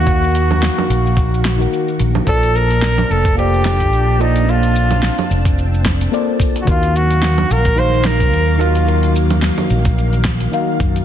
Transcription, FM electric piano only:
0.00 0.04 D#3 loud
0.00 0.05 D#4 medium
0.00 0.07 F#4 medium
0.00 0.08 A#4 medium
0.00 0.09 F5 loud
0.04 1.55 D#3 medium
0.04 1.56 D#4 medium
0.04 1.57 F#4 medium
0.04 1.57 A#4 medium
0.09 1.58 F5 medium
1.57 2.23 D#3 medium
1.57 2.23 D#4 medium
1.57 2.24 F#4 medium
1.57 2.24 A#4 medium
1.61 2.25 F#5 medium
2.24 3.33 A#3 medium
2.24 3.34 F4 medium
2.24 3.35 C5 medium
2.24 3.34 A5 medium
2.29 3.35 D5 loud
3.35 4.16 A#3 medium
3.35 4.16 F4 medium
3.35 4.17 A4 medium
3.35 4.18 C5 medium
3.40 4.18 D5 loud
4.19 4.44 A#3 medium
4.19 4.44 F4 medium
4.19 4.45 A4 medium
4.19 4.45 C5 medium
4.19 4.45 D5 loud
4.45 6.08 A#3 medium
4.45 6.09 F4 medium
4.45 6.10 A4 medium
4.45 6.10 C5 medium
4.50 6.11 D5 medium
6.11 6.64 A#3 medium
6.11 6.64 F4 medium
6.11 6.65 A4 medium
6.11 6.65 C5 medium
6.11 6.65 D5 loud
6.64 7.73 D#3 medium
6.64 7.74 D#4 medium
6.64 7.74 F#4 medium
6.64 7.75 A#4 medium
6.69 7.76 F5 loud
7.75 8.56 D#3 loud
7.75 8.57 D#4 medium
7.75 8.57 F#4 medium
7.75 8.58 A#4 medium
7.80 8.58 F5 loud
8.58 8.83 D#3 loud
8.58 8.84 D#4 medium
8.58 8.84 F#4 medium
8.58 8.85 A#4 medium
8.58 8.85 F5 loud
8.84 10.48 D#3 medium
8.84 10.49 D#4 medium
8.84 10.50 F#4 medium
8.84 10.50 A#4 medium
8.89 10.51 F5 medium
10.52 11.04 D#3 loud
10.52 11.05 D#4 medium
10.52 11.05 F#4 medium
10.52 11.05 A#4 medium
10.52 11.05 F5 loud

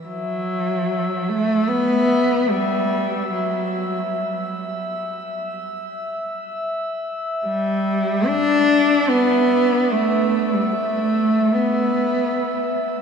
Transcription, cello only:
0.06 1.31 F#3 medium
1.29 1.71 A3 medium
1.69 2.51 B3 medium
2.50 3.32 G3 medium
3.32 4.12 F#3 medium
7.45 8.27 G3 medium
8.26 9.11 D4 loud
9.09 9.93 B3 loud
9.92 10.56 A3 medium
10.54 10.74 G3 medium
10.72 11.56 A3 medium
11.54 12.79 B3 medium

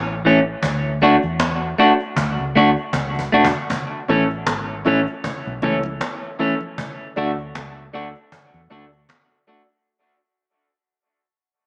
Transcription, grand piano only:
4.08 4.26 C#4 medium
4.08 4.26 E4 medium
4.08 4.27 A4 loud
4.85 5.03 C#4 medium
4.85 5.03 E4 medium
4.85 5.03 A4 medium
5.62 5.80 C#4 medium
5.62 5.80 E4 medium
5.62 5.80 A4 medium
5.84 5.91 E4 soft
5.84 5.91 A4 soft
6.39 6.57 C#4 medium
6.39 6.57 E4 medium
6.39 6.57 A4 loud
7.16 7.34 D4 medium
7.16 7.34 F#4 medium
7.16 7.34 A4 loud
7.93 8.11 D4 medium
7.93 8.11 F#4 medium
7.93 8.11 A4 medium
8.70 8.88 D4 medium
8.70 8.88 F#4 medium
8.70 8.88 A4 loud
8.92 8.99 F#4 soft
8.92 8.99 A4 soft
9.47 9.65 D4 medium
9.47 9.65 F#4 medium
9.47 9.65 A4 medium

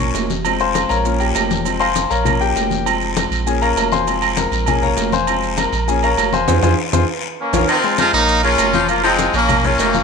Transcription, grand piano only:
0.00 0.28 F3 medium
0.00 0.28 A#3 medium
0.00 0.28 C#4 medium
0.00 0.27 C#6 loud
0.45 1.02 F3 medium
0.45 1.02 G#3 medium
0.45 1.03 C4 medium
0.61 0.88 C5 medium
0.61 0.88 F5 medium
0.61 0.88 G#5 medium
0.61 0.88 C6 loud
0.89 1.18 A#4 medium
0.89 1.18 C#5 medium
0.89 1.18 F5 medium
0.89 1.18 A#5 loud
1.05 1.62 F3 medium
1.05 1.62 A#3 medium
1.05 1.63 C#4 medium
1.20 1.63 G4 medium
1.20 1.62 G5 medium
1.65 1.85 F3 soft
1.65 1.85 G#3 medium
1.65 1.86 C4 medium
1.80 2.08 C5 medium
1.80 2.09 F5 loud
1.80 2.09 G#5 medium
1.80 2.08 C6 loud
2.10 2.39 A#4 medium
2.10 2.39 C#5 medium
2.10 2.39 F5 medium
2.10 2.39 A#5 loud
2.25 2.83 F3 medium
2.25 2.83 A#3 medium
2.25 2.83 C#4 medium
2.41 2.83 G4 medium
2.41 2.83 G5 loud
2.85 3.43 F3 medium
2.85 3.43 G#3 medium
2.85 3.44 C4 medium
3.46 4.04 F3 medium
3.46 4.04 A#3 medium
3.46 4.04 C#4 medium
3.46 3.62 G#4 medium
3.46 3.61 G#5 medium
3.62 3.90 A#4 medium
3.62 3.90 C#5 medium
3.62 3.90 F5 medium
3.62 3.90 A#5 loud
3.92 4.34 C5 medium
3.92 4.34 F5 medium
3.92 4.34 G#5 medium
3.92 4.34 C6 loud
4.07 4.64 F3 medium
4.07 4.64 G#3 medium
4.07 4.65 C4 medium
4.37 4.79 A#4 medium
4.37 4.79 A#5 medium
4.67 5.10 F3 medium
4.67 5.11 A#3 medium
4.67 5.11 C#4 medium
4.67 4.82 G#4 medium
4.67 4.82 G#5 loud
4.83 5.11 A#4 medium
4.83 5.11 C#5 medium
4.83 5.11 F5 medium
4.83 5.10 A#5 loud
5.13 5.55 C5 medium
5.13 5.55 F5 medium
5.13 5.55 G#5 medium
5.13 5.55 C6 loud
5.28 5.71 F3 medium
5.28 5.71 G#3 medium
5.28 5.71 C4 medium
5.59 6.00 A#4 medium
5.59 6.00 A#5 medium
5.87 6.08 F3 medium
5.87 6.08 A#3 medium
5.87 6.08 C#4 medium
5.87 6.03 G#4 medium
5.87 6.03 G#5 medium
6.04 6.31 A#4 medium
6.04 6.32 C#5 medium
6.04 6.31 F5 medium
6.04 6.31 A#5 loud
6.33 6.47 C5 medium
6.33 6.47 F5 loud
6.33 6.48 G#5 loud
6.33 6.47 C6 loud
6.48 6.58 F4 loud
6.48 6.58 G#4 medium
6.48 6.58 C5 medium
6.63 6.73 F4 loud
6.63 6.73 G#4 loud
6.63 6.73 C5 loud
6.93 7.03 F4 loud
6.93 7.03 G#4 loud
6.93 7.03 C5 loud
7.54 7.63 F4 loud
7.54 7.63 A#4 loud
7.54 7.63 C#5 loud
7.84 8.08 G#3 medium
7.84 8.09 G#4 medium
7.84 8.09 C5 medium
8.13 8.38 A#3 medium
8.13 8.38 A#4 medium
8.13 8.39 C#5 medium
8.44 8.69 A#3 medium
8.44 8.69 A#4 medium
8.44 8.69 C#5 medium
8.73 8.86 F3 medium
8.73 8.86 F4 loud
8.73 8.86 F5 medium
8.88 9.01 F3 medium
8.88 9.01 F4 medium
8.88 9.01 F5 medium
9.03 9.28 F3 loud
9.03 9.28 F4 loud
9.03 9.29 F5 loud
9.34 9.59 A#3 medium
9.34 9.59 A#4 medium
9.34 9.59 C#5 medium
9.64 9.89 A#3 medium
9.64 9.89 A#4 medium
9.64 9.89 C#5 medium
9.94 10.03 F3 medium
9.94 10.03 F4 loud
9.94 10.03 F5 loud

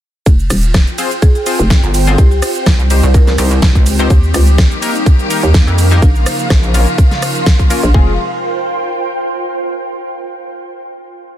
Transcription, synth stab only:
0.98 1.11 C4 medium
0.98 1.11 F4 medium
0.98 1.11 G#4 medium
0.98 1.11 C5 medium
1.46 1.59 C4 medium
1.46 1.59 F4 medium
1.46 1.59 G#4 medium
1.46 1.59 C5 loud
2.07 2.17 C4 loud
2.07 2.17 F4 medium
2.07 2.17 G#4 medium
2.07 2.17 C5 loud
2.90 3.03 C4 medium
2.90 3.03 D#4 medium
2.90 3.03 G4 medium
2.90 3.03 C5 medium
3.38 3.51 C4 medium
3.38 3.51 D#4 medium
3.38 3.51 G4 medium
3.38 3.51 C5 medium
3.99 4.09 C4 loud
3.99 4.09 D#4 medium
3.99 4.09 G4 medium
3.99 4.09 C5 loud
4.82 4.95 A#3 medium
4.82 4.95 D#4 medium
4.82 4.95 G4 medium
4.82 4.95 A#4 medium
5.30 5.43 A#3 medium
5.30 5.43 D#4 medium
5.30 5.43 G4 medium
5.30 5.43 A#4 loud
5.91 6.01 A#3 loud
5.91 6.01 D#4 medium
5.91 6.01 G4 loud
5.91 6.01 A#4 loud
6.74 6.87 A#3 medium
6.74 6.87 C#4 medium
6.74 6.87 F4 medium
6.74 6.87 A#4 medium
7.70 7.83 A#3 medium
7.70 7.83 C#4 medium
7.70 7.83 F4 medium
7.70 7.83 A#4 loud
7.94 8.13 G#3 medium
7.94 8.13 C4 medium
7.94 8.13 F4 medium
7.94 8.13 G#4 loud

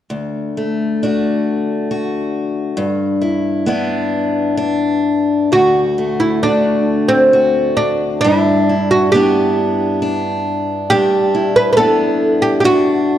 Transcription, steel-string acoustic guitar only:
0.10 2.76 D2 soft
0.57 1.03 A3 soft
1.03 2.86 A3 soft
1.03 3.25 D4 soft
1.03 1.90 F#4 soft
1.91 2.86 F#4 soft
2.77 5.51 G2 medium
3.22 3.66 E4 soft
3.66 5.61 B3 medium
3.66 4.57 D4 medium
3.66 5.61 E4 soft
4.57 5.52 D4 medium
5.52 8.24 D2 medium
5.52 6.44 F#4 soft
5.98 6.43 A3 soft
6.43 8.34 A3 soft
6.43 8.25 D4 soft
6.43 7.32 F#4 soft
7.33 8.24 F#4 soft
8.24 10.90 G2 medium
8.24 9.15 D4 medium
8.69 9.15 E4 soft
9.14 11.77 B3 soft
9.14 10.02 D4 medium
9.14 11.34 E4 soft
10.02 10.91 D4 soft
10.91 13.18 G2 medium
10.91 11.78 D4 medium
11.35 11.77 E4 soft
11.77 13.18 B3 soft
11.77 12.64 D4 soft
11.77 13.18 E4 medium
12.64 13.18 D4 medium

